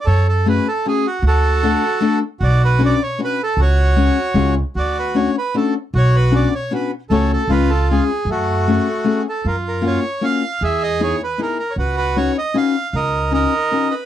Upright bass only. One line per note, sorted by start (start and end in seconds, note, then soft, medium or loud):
0.07 0.57 F#2 medium
1.22 1.73 D2 medium
2.41 2.91 B1 medium
3.57 4.08 C#2 medium
4.34 4.60 C#2 medium
4.75 5.26 D2 medium
5.94 6.44 B1 medium
7.10 7.35 C#2 medium
7.47 7.98 C#2 medium
8.25 8.76 F#2 medium
9.45 9.95 F#2 medium
10.61 11.11 E2 medium
11.76 12.27 C#2 medium
12.93 13.44 C#2 medium